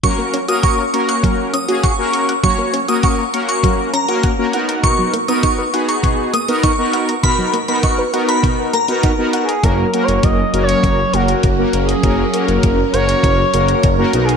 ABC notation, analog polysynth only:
X:1
M:4/4
L:1/16
Q:1/4=100
K:F#mix
V:1 name="Analog polysynth"
[A,CFA]2 z [A,CFA]2 z [A,CFA]4 z [A,CFG]2 [A,CFA]2 z | [A,CFc]2 z [A,CFA]2 z [A,CFA]4 z [A,CFA]2 [A,CFA] [B,DFA]2- | [B,DFA]2 z [B,DFA]2 z [B,DFG]4 z [B,DFA]2 [B,DFA]2 z | [B,DFA]2 z [B,DFA]2 z [B,DFA]4 z [B,DFA]2 [B,DFA]2 z |
[A,CFA]2 [A,CFA]3 z [A,CFA]3 z [A,CFA]2 z [A,CFA]2 z | [A,CFA]2 [A,CFA]3 z [A,CFA]3 z [A,CFA]2 z [A,CFA] [B,DFA]2 |]